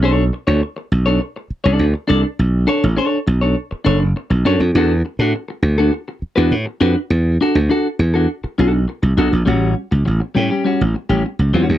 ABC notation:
X:1
M:4/4
L:1/16
Q:1/4=102
K:Amix
V:1 name="Clean electric guitar"
[DAc] z2 [DAc] z3 [DAc] z3 [DAd] z2 [DAd] z | z2 [DAc] z [DAc] z2 [DAc] z2 [DAc] z3 [DAc] z | [DFA] z2 [DFA] z3 [DFA] z3 [DFB] z2 [DFB] z | z2 [DFA] z [DFA] z2 [DFA] z2 [DFA] z3 [DFA] z |
[G,CF]2 z4 [G,CG] [G,CG] [G,CF] z2 [G,CG] z2 [G,CF] z |]
V:2 name="Slap bass" clef=bass
B,,,2 z D,, z2 B,,,2 z3 =C,, D,, z C,, z | B,,,2 z A,,, z2 B,,,2 z2 F,,,2 z B,,, F,, =F,, | E,,2 z A,, z2 D,,2 z3 E,, A,, z =F,, z | E,,2 z D,, z2 E,,2 z2 B,,,2 z =C,, B,,, _B,,, |
A,,,2 z C,, A,,, z A,, z2 A,,, z A,,, z C,, E,, ^D,, |]